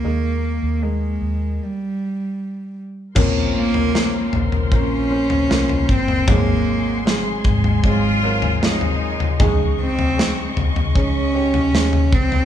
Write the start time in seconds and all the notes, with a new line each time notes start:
Already playing: A#3
0.04 D#2 D#3 G#3 A#3 D#4 A#4
0.63 D#2
0.82 G#3 A#3 D#4 A#4
1.21 D#2
1.63 G3
3.15 A#1 A#2 F3 A#3 C4 C#4 A#4 C5 C6, kick, floor tom, crash
3.56 A#3
3.74 floor tom
3.93 F3 A#3 C4 C#4 F4, snare
4.33 A#1, floor tom
4.52 floor tom
4.71 A#1 F3 A#3 C#4 A#4 C5, kick
5.10 F3 A#3 C#4 A#4 C5
5.30 floor tom
5.48 C2 F3 A#3 F4 A#4 C5, snare
5.69 floor tom
5.89 G1 C4, kick
6.08 floor tom
6.27 G#1 G#2 F#3 G#3 A#3 C4 D#4 G#4 G#5, kick, floor tom
7.05 F#3 G#3 C4 D#4 G#4, snare
7.44 G#1, kick, floor tom
7.64 floor tom
7.83 G#1 F#3 G#3 C4 D#4 F4 G#4, kick
8.23 F#3 G#3 C4 D#4 A#4
8.42 floor tom
8.62 F#3 G#3 C4 D#4 F4, snare
8.81 floor tom
9.20 floor tom
9.39 C#2 C#3 G#3 D#4 G#4 D#5 C#6, kick, floor tom
9.80 C4
9.99 floor tom
10.17 G#3 D#4 G#4, snare
10.57 C#2, floor tom
10.76 floor tom
10.95 C#2 C#4 D#4 G#4, kick
11.34 C#4 D#4 G4
11.54 floor tom
11.73 D#2 C#3 D#4 G#4, snare
11.93 floor tom
12.12 C#2 C4, kick
12.32 floor tom